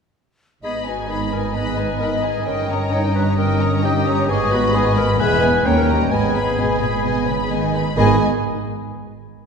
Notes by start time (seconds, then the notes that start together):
0.63 G#1 G#2 B3 D#4 G#4 D#5 B5
0.86 D#4 F#4 B4 G#5
1.10 D#3 B3 D#4 G#4 D#5 B5
1.32 D#4 A#4 B4 G#5
1.54 B3 B4 D#5 G#5 B5
1.78 D#4 B4 G#5
2.00 D#3 B3 D#4 A#4 D#5 B5
2.23 D#4 G#4 B4 G#5
2.46 G1 G2 C#4 D#4 A#4 D#5 G5
2.69 C#4 C#5 A#5
2.92 D#3 C#4 D#4 C#5 D#5 G5 A#5
3.14 C#4 B4 C#5 A#5
3.38 D#4 A#4 D#5 G5 D#6
3.60 C#4 C#5 A#5
3.82 D#3 C#4 D#4 G4 D#5 G5
4.06 C#4 C#5 A#5
4.28 G#1 G#2 G#3 B3 G#4 D#5 G#5 C#6
4.51 B3 F#4 B4 B5
4.74 D#3 G#3 B3 G#4 D#5 G#5 B5
4.96 B3 A#4 B4 B5
5.19 E1 E2 G#3 B3 B4 E5 G#5 B5
5.42 B3 B4 G#5
5.66 D#2 G3 A#3 C#4 C#5 G5 A#5
5.78 A#4
5.89 G3 D#5 A#5
6.06 A#4
6.11 G#1 G#2 B3 G#4 D#5 G#5 B5
6.35 G#3 B4 B5
6.58 B2 G#3 B3 D#5 G#5
6.81 A#2 G#3 B4 B5
7.04 B2 B3 D#5 G#5
7.27 C#3 G#3 B4 B5
7.50 D#3 G#3 B3 D#5 G#5
7.73 G#3 B4 B5
7.96 G#1 G#2 D#3 G#3 B3 G#4 D#5 G#5 B5